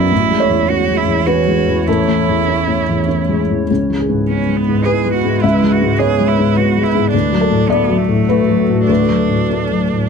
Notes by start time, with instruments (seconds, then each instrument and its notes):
Already playing: felt piano B1 F#2 F#3 B3 D5 E5, cello E4
0.11 felt piano A1, analog synth pad E3 E4 C#5
0.30 felt piano G#3
0.40 felt piano C#5
0.49 felt piano E2
0.69 felt piano C#4, cello F#4
0.89 felt piano G#3
0.97 cello E4
1.07 felt piano E2
1.26 felt piano C#4 B4, cello F#4
1.47 felt piano G#3
1.67 felt piano E2
1.86 felt piano A1 A4, cello E4
2.08 felt piano A3
2.28 felt piano E2
2.48 felt piano C#4
2.68 felt piano A3
2.89 felt piano E2
3.08 felt piano C#4
3.29 felt piano G#3
3.50 felt piano E2
3.70 felt piano C#2, analog synth pad G#3 E4 B4
3.90 felt piano G#3
3.99 felt piano G#4
4.09 felt piano G#2
4.28 felt piano B3, cello C#4
4.48 felt piano G#3
4.57 cello B3
4.68 felt piano G#2
4.85 felt piano B3 B4, cello G#4
5.06 felt piano G#3
5.13 cello F#4
5.25 felt piano G#2
5.42 felt piano C#2 E5, cello E4
5.62 felt piano G#3
5.72 cello F#4
5.82 felt piano G#2
5.99 felt piano B3 C#5, cello G#4
6.20 felt piano G#3
6.28 cello E4
6.39 felt piano G#2
6.57 felt piano B3, cello F#4
6.77 felt piano G#3
6.83 cello E4
6.95 felt piano G#2
7.11 felt piano D2, analog synth pad A3 F#4 A4, cello D4
7.33 felt piano F#3
7.41 felt piano A4
7.50 felt piano A2
7.69 felt piano A3 D5, cello B3
7.89 felt piano F#3
7.98 cello A3
8.08 felt piano A2
8.29 felt piano A3 B4
8.49 felt piano F#3
8.69 felt piano A2
8.87 felt piano D2 B4, cello D4
9.10 felt piano F#3
9.29 felt piano A2
9.50 felt piano A3 A4
9.71 felt piano F#3
9.92 felt piano A2